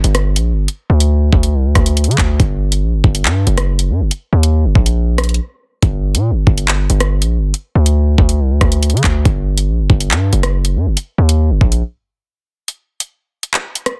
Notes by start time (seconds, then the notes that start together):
0.04 G1, closed hi-hat
0.15 cross-stick, closed hi-hat
0.36 A#1, closed hi-hat
0.52 G1
0.68 closed hi-hat
0.90 D2
1.00 closed hi-hat
1.33 D2, kick
1.43 closed hi-hat
1.54 C2
1.65 D2
1.75 D2, kick, cross-stick, closed hi-hat
1.86 closed hi-hat
1.97 closed hi-hat
2.04 D3, closed hi-hat
2.11 closed hi-hat
2.18 D2, kick, clap
2.40 G1, kick, closed hi-hat
2.72 closed hi-hat
2.83 A#1
2.93 G1
3.04 G1, kick
3.15 closed hi-hat
3.25 G2, clap
3.47 F#1, closed hi-hat
3.58 cross-stick, closed hi-hat
3.79 closed hi-hat
3.90 G2
4.00 F#1
4.11 closed hi-hat
4.33 D#2
4.43 closed hi-hat
4.65 F#1
4.75 A#1, kick
4.86 closed hi-hat
5.18 cross-stick, closed hi-hat
5.24 closed hi-hat
5.29 closed hi-hat
5.34 closed hi-hat
5.83 G1, kick, closed hi-hat
6.15 A#2, closed hi-hat
6.31 G1
6.47 G1, kick
6.58 closed hi-hat
6.68 clap
6.90 G1, closed hi-hat
7.00 cross-stick, closed hi-hat
7.22 A#1, closed hi-hat
7.38 G1
7.54 closed hi-hat
7.75 D2
7.86 closed hi-hat
8.18 D2, kick
8.29 closed hi-hat
8.40 C2
8.50 D2
8.61 D2, kick, cross-stick, closed hi-hat
8.72 closed hi-hat
8.83 closed hi-hat
8.90 D3, closed hi-hat
8.97 closed hi-hat
9.04 D2, kick, clap
9.25 G1, kick, closed hi-hat
9.58 closed hi-hat
9.68 A#1
9.79 G1
9.90 G1, kick
10.00 closed hi-hat
10.11 G2, clap
10.33 F#1, closed hi-hat
10.43 cross-stick, closed hi-hat
10.65 closed hi-hat
10.75 G2
10.86 F#1
10.97 closed hi-hat
11.18 D#2
11.29 closed hi-hat
11.50 F#1
11.61 A#1, kick
11.72 closed hi-hat
12.68 closed hi-hat
13.00 closed hi-hat
13.43 closed hi-hat
13.54 clap
13.75 closed hi-hat
13.86 cross-stick, closed hi-hat